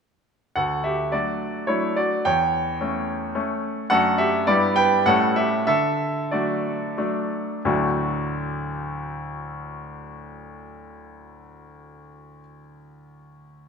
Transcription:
0.56 1.11 D2 soft
0.56 0.83 A4 soft
0.56 0.84 F#5 medium
0.84 1.11 G4 soft
0.84 1.12 E5 medium
1.12 1.64 F#3 soft
1.12 1.65 A3 soft
1.12 1.65 D4 soft
1.12 1.65 F#4 soft
1.12 1.68 D5 medium
1.67 2.21 F#3 soft
1.67 2.21 A3 soft
1.67 2.22 D4 soft
1.67 1.95 E4 medium
1.67 1.96 C#5 medium
1.96 2.24 F#4 soft
1.96 2.25 D5 medium
2.25 2.79 E2 medium
2.25 3.60 C#5 medium
2.25 3.63 G5 medium
2.81 3.32 A3 soft
2.81 3.32 C#4 medium
3.35 3.86 A3 medium
3.35 3.86 C#4 medium
3.90 4.45 F#2 medium
3.90 4.43 A3 soft
3.90 4.43 D4 soft
3.90 4.17 A4 medium
3.90 4.18 F#5 loud
4.18 4.45 G4 medium
4.18 4.47 E5 medium
4.47 5.04 G2 medium
4.47 5.02 G3 medium
4.47 5.02 B3 soft
4.47 5.03 E4 soft
4.47 4.75 G4 medium
4.47 4.76 D5 medium
4.76 5.04 B4 medium
4.76 5.06 G5 medium
5.06 5.66 A2 medium
5.06 5.64 G3 medium
5.06 5.64 A3 soft
5.06 5.65 C#4 soft
5.06 5.35 A4 medium
5.06 5.36 F#5 medium
5.36 5.66 G4 medium
5.36 5.65 E5 medium
5.67 6.30 D3 medium
5.67 6.28 A4 medium
5.67 6.31 E5 medium
6.31 6.93 F#3 soft
6.31 6.93 A3 soft
6.31 6.94 D4 soft
6.31 7.27 F#4 soft
6.31 7.31 D5 medium
6.97 7.61 F#3 soft
6.97 7.61 A3 soft
6.97 7.61 D4 medium
7.65 12.38 D2 medium
7.65 12.38 A2 medium
7.65 12.39 F#3 medium
7.65 12.39 A3 medium
7.65 12.39 D4 soft
7.65 12.39 F#4 medium

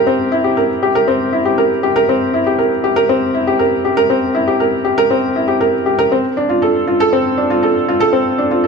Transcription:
0.00 0.07 C4 medium
0.00 0.32 E4 medium
0.00 0.44 G4 medium
0.00 0.57 A#4 loud
0.07 0.19 C4 medium
0.32 0.39 E4 medium
0.44 0.56 G4 medium
0.57 0.69 A#4 medium
0.83 0.90 G4 medium
0.95 1.07 A#4 loud
1.08 1.19 C4 medium
1.33 1.40 E4 medium
1.45 1.57 G4 medium
1.58 1.70 A#4 medium
1.83 1.90 G4 medium
1.96 2.08 A#4 loud
2.09 2.21 C4 medium
2.34 2.41 E4 medium
2.47 2.58 G4 medium
2.59 2.71 A#4 medium
2.84 2.91 G4 medium
2.96 3.08 A#4 loud
3.09 3.21 C4 medium
3.34 3.41 E4 medium
3.47 3.59 G4 medium
3.59 3.71 A#4 medium
3.85 3.92 G4 medium
3.97 4.09 A#4 loud
4.10 4.22 C4 medium
4.35 4.42 E4 medium
4.47 4.60 G4 medium
4.60 4.72 A#4 medium
4.85 4.92 G4 medium
4.98 5.10 A#4 loud
5.11 5.23 C4 medium
5.36 5.43 E4 medium
5.48 5.60 G4 medium
5.61 5.73 A#4 medium
5.86 5.93 G4 medium
5.99 6.11 A#4 loud
6.12 6.24 C4 medium
6.37 6.44 D4 medium
6.49 6.61 F4 medium
6.62 6.74 A4 medium
6.87 6.94 F4 medium
7.00 7.12 A4 loud
7.13 7.24 C4 medium
7.38 7.45 D4 medium
7.50 7.62 F4 medium
7.63 7.75 A4 medium
7.88 7.95 F4 medium
8.00 8.12 A4 loud
8.13 8.25 C4 medium
8.38 8.46 D4 medium
8.51 8.63 F4 medium
8.64 8.67 A4 medium

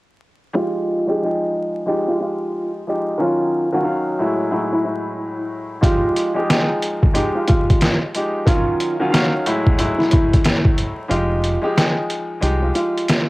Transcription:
0.53 1.03 F3 medium
0.53 1.03 G#3 medium
0.53 1.04 D#4 medium
0.53 1.05 F4 loud
0.53 1.04 G4 loud
1.07 1.21 F3 medium
1.07 1.21 G#3 medium
1.07 1.22 D#4 medium
1.07 1.26 G4 loud
1.07 1.84 G#4 medium
1.22 1.84 F3 medium
1.22 1.84 G#3 medium
1.22 1.84 D#4 medium
1.22 1.85 G5 loud
1.86 2.80 F3 medium
1.86 2.80 G#3 medium
1.86 2.80 D#4 medium
1.86 2.06 D#4 medium
1.86 2.81 G4 loud
2.08 2.19 F4 medium
2.21 2.71 F4 medium
2.87 3.18 F3 medium
2.87 3.18 G#3 medium
2.87 3.18 D#4 medium
2.87 3.19 G4 medium
3.18 3.67 D#3 medium
3.18 3.67 F#3 medium
3.18 3.68 C#4 medium
3.18 3.68 F4 medium
3.18 3.71 F4 loud
3.72 3.81 D#3 loud
3.72 3.82 F#3 medium
3.72 3.82 C#4 medium
3.72 3.90 F4 loud
3.72 4.48 F#4 medium
3.82 4.17 D#3 medium
3.82 4.17 F#3 medium
3.82 4.17 C#4 medium
3.82 4.18 F5 loud
4.19 4.49 A2 loud
4.19 4.50 F#3 medium
4.19 4.50 G#3 medium
4.19 4.50 E4 loud
4.51 5.75 A2 medium
4.51 5.75 F#3 medium
4.51 5.76 G#3 medium
4.51 4.70 D#4 medium
4.51 5.76 E4 loud
4.73 4.83 E4 medium
4.85 5.35 E4 medium
5.81 6.31 F3 medium
5.81 6.31 G#3 medium
5.81 6.31 D#4 medium
5.81 6.33 F4 loud
5.81 6.32 G4 loud
5.81 kick loud
5.81 closed hi-hat medium
6.16 closed hi-hat medium
6.34 6.48 F3 medium
6.34 6.49 G#3 medium
6.34 6.50 D#4 medium
6.34 6.53 G4 loud
6.39 7.12 G#4 medium
6.50 7.11 F3 medium
6.50 7.12 G#3 medium
6.50 7.12 D#4 medium
6.50 7.12 G5 loud
6.50 snare loud
6.50 closed hi-hat medium
6.82 closed hi-hat medium
7.03 kick medium
7.13 8.07 F3 medium
7.13 8.07 G#3 medium
7.13 8.08 D#4 medium
7.13 7.34 D#4 medium
7.13 8.08 G4 loud
7.13 closed hi-hat medium
7.35 7.46 F4 medium
7.48 7.98 F4 medium
7.48 kick medium
7.48 closed hi-hat medium
7.70 kick medium
7.70 closed hi-hat medium
7.81 snare loud
7.81 closed hi-hat medium
8.14 8.45 F3 medium
8.14 8.45 G#3 medium
8.14 8.46 D#4 medium
8.14 8.46 G4 medium
8.14 closed hi-hat medium
8.45 8.95 D#3 medium
8.45 8.95 F#3 medium
8.45 8.95 C#4 medium
8.45 8.97 F4 loud
8.45 8.96 F4 medium
8.45 kick loud
8.45 closed hi-hat medium
8.80 closed hi-hat medium
9.00 9.08 D#3 loud
9.00 9.09 F#3 medium
9.00 9.09 C#4 medium
9.00 9.18 F4 loud
9.00 9.74 F#4 medium
9.10 9.44 D#3 medium
9.10 9.44 F#3 medium
9.10 9.45 C#4 medium
9.10 9.45 F5 loud
9.14 snare loud
9.14 closed hi-hat medium
9.46 9.77 A2 loud
9.46 9.77 F#3 medium
9.46 9.77 G#3 medium
9.46 9.78 E4 loud
9.46 closed hi-hat medium
9.67 kick medium
9.78 11.02 A2 medium
9.78 11.03 F#3 medium
9.78 11.03 G#3 medium
9.78 9.97 D#4 medium
9.78 11.03 E4 loud
9.78 closed hi-hat medium
9.98 10.10 E4 medium
9.98 snare soft
10.11 10.62 E4 medium
10.11 kick medium
10.11 closed hi-hat medium
10.33 kick medium
10.33 closed hi-hat medium
10.45 snare loud
10.45 closed hi-hat loud
10.65 kick medium
10.78 closed hi-hat medium
11.08 11.56 F1 loud
11.08 11.58 F3 medium
11.08 11.58 G#3 medium
11.08 11.59 D#4 medium
11.08 11.60 F4 loud
11.08 11.59 G4 loud
11.08 closed hi-hat medium
11.44 closed hi-hat medium
11.62 11.76 F3 medium
11.62 11.77 G#3 medium
11.62 11.77 D#4 medium
11.62 11.81 G4 loud
11.62 12.39 G#4 medium
11.77 12.39 F3 medium
11.77 12.39 G#3 medium
11.77 12.39 D#4 medium
11.77 12.40 G5 medium
11.77 snare loud
11.77 closed hi-hat medium
12.10 closed hi-hat medium
12.41 12.70 C2 medium
12.41 13.29 F3 medium
12.41 13.29 G#3 medium
12.41 13.29 D#4 medium
12.41 12.61 D#4 medium
12.41 13.29 G4 loud
12.41 closed hi-hat medium
12.62 12.74 F4 medium
12.75 13.26 F4 medium
12.75 closed hi-hat medium
12.98 closed hi-hat medium
13.08 snare loud
13.08 closed hi-hat loud

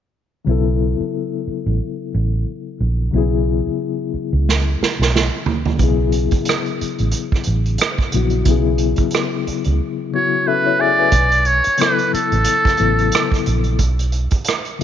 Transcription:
0.45 0.93 B1 medium
0.45 3.08 C#3 medium
0.45 3.09 F#3 medium
0.45 3.10 B3 medium
0.49 3.10 E4 medium
0.49 3.11 A4 medium
1.00 muted fingered electric bass stroke soft
1.47 muted fingered electric bass stroke soft
1.66 1.78 A1 medium
2.15 2.43 A1 medium
2.80 3.09 A#1 medium
3.11 3.59 B1 medium
3.11 5.75 C#3 medium
3.11 5.75 F#3 medium
3.11 5.76 B3 medium
3.16 5.77 E4 medium
3.16 5.78 G#4 medium
3.67 muted fingered electric bass stroke soft
4.14 muted fingered electric bass stroke soft
4.33 4.74 C#2 medium
4.49 snare soft
4.81 muted fingered electric bass stroke soft
4.81 snare medium
4.99 5.28 B1 medium
4.99 snare soft
5.16 snare medium
5.46 floor tom medium
5.65 floor tom medium
5.78 6.26 B1 medium
5.78 8.08 C#3 medium
5.78 8.09 F#3 medium
5.78 8.09 B3 medium
5.78 kick medium
5.78 closed hi-hat medium
5.83 8.10 E4 medium
5.83 8.11 G#4 medium
6.12 closed hi-hat medium
6.31 muted fingered electric bass stroke soft
6.31 kick medium
6.31 closed hi-hat soft
6.45 closed hi-hat medium
6.49 cross-stick medium
6.66 closed hi-hat soft
6.81 muted fingered electric bass stroke soft
6.81 closed hi-hat medium
6.98 7.12 A1 medium
6.98 closed hi-hat soft
7.11 closed hi-hat medium
7.32 kick medium
7.32 cross-stick soft
7.43 7.76 A1 medium
7.43 closed hi-hat medium
7.66 closed hi-hat soft
7.78 cross-stick loud
7.78 closed hi-hat medium
7.98 kick medium
7.98 cross-stick soft
7.98 closed hi-hat soft
8.12 8.43 A#1 medium
8.12 8.43 C#3 soft
8.12 8.44 F#3 soft
8.12 8.46 B3 soft
8.12 8.47 E4 soft
8.12 closed hi-hat medium
8.16 8.48 F#4 medium
8.30 closed hi-hat soft
8.44 8.92 B1 medium
8.44 10.09 C#3 medium
8.44 10.09 F#3 medium
8.44 10.10 B3 medium
8.44 kick medium
8.44 closed hi-hat medium
8.49 10.11 E4 medium
8.49 10.12 G#4 medium
8.78 closed hi-hat medium
8.96 muted fingered electric bass stroke soft
8.96 kick medium
8.96 closed hi-hat soft
9.11 closed hi-hat medium
9.15 cross-stick loud
9.47 muted fingered electric bass stroke soft
9.47 closed hi-hat medium
9.64 9.78 C#2 medium
9.64 closed hi-hat soft
10.12 11.13 C#3 soft
10.12 11.13 F#3 soft
10.12 11.14 B3 soft
10.12 10.47 E4 soft
10.12 10.48 F#4 soft
10.12 10.49 C#5 medium
10.47 10.65 C#4 soft
10.47 10.65 A4 medium
10.47 10.82 B4 medium
10.47 10.78 E5 medium
10.66 10.79 E4 medium
10.66 10.79 C#5 medium
10.80 10.98 G#4 medium
10.80 11.48 D5 medium
10.80 10.98 E5 medium
10.80 10.98 G#5 medium
10.99 11.31 B4 soft
10.99 11.30 G#5 medium
11.12 11.59 B1 medium
11.12 kick medium
11.12 closed hi-hat medium
11.31 closed hi-hat soft
11.45 11.82 C#5 medium
11.45 closed hi-hat medium
11.64 muted fingered electric bass stroke soft
11.64 closed hi-hat soft
11.77 12.27 C#3 medium
11.77 12.28 F#3 medium
11.77 12.28 B3 medium
11.77 12.29 E4 soft
11.77 12.29 A4 medium
11.77 12.13 B4 medium
11.77 closed hi-hat medium
11.82 cross-stick medium
11.98 closed hi-hat soft
12.14 13.43 A4 medium
12.14 muted fingered electric bass stroke soft
12.14 closed hi-hat medium
12.32 12.44 A1 medium
12.32 closed hi-hat soft
12.44 closed hi-hat medium
12.65 kick medium
12.65 cross-stick soft
12.65 closed hi-hat soft
12.77 13.09 A1 medium
12.77 13.03 C#3 medium
12.77 13.04 F#3 soft
12.77 13.04 B3 soft
12.77 13.04 E4 soft
12.77 closed hi-hat medium
12.81 13.05 A4 medium
12.99 closed hi-hat soft
13.12 cross-stick loud
13.12 closed hi-hat medium
13.32 kick medium
13.32 cross-stick soft
13.32 closed hi-hat soft
13.46 13.76 A#1 medium
13.46 closed hi-hat medium
13.64 closed hi-hat soft
13.79 14.26 B1 medium
13.79 kick medium
13.79 closed hi-hat medium
13.99 closed hi-hat soft
14.12 closed hi-hat medium
14.31 muted fingered electric bass stroke soft
14.31 kick medium
14.31 closed hi-hat soft
14.44 closed hi-hat medium
14.48 cross-stick medium
14.65 closed hi-hat soft
14.79 14.84 C#3 medium
14.79 14.84 F#3 medium
14.79 14.84 B3 medium

